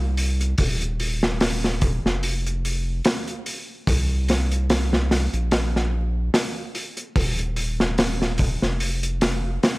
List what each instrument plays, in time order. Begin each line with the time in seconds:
Already playing: sub bass C2
0.17 open hi-hat
0.41 closed hi-hat
0.58 sub bass D#1, kick, open hi-hat
0.81 closed hi-hat
1.00 open hi-hat
1.23 snare
1.40 snare, open hi-hat
1.64 snare
1.81 kick, open hi-hat
2.04 sub bass F1, snare
2.23 open hi-hat
2.46 closed hi-hat
2.65 open hi-hat
3.04 snare, open hi-hat
3.27 closed hi-hat
3.46 open hi-hat
3.87 sub bass C2, kick, open hi-hat
4.28 snare, open hi-hat
4.51 closed hi-hat
4.70 snare, open hi-hat
4.93 snare
5.11 snare, open hi-hat
5.33 sub bass A#1, closed hi-hat
5.51 snare, open hi-hat
5.76 snare
6.34 snare, open hi-hat
6.75 open hi-hat
6.97 closed hi-hat
7.16 sub bass D#1, kick, open hi-hat
7.39 closed hi-hat
7.56 open hi-hat
7.80 snare
7.98 snare, open hi-hat
8.22 snare
8.38 kick, open hi-hat
8.62 sub bass F1, snare
8.80 open hi-hat
9.03 closed hi-hat
9.21 snare, open hi-hat
9.63 snare, open hi-hat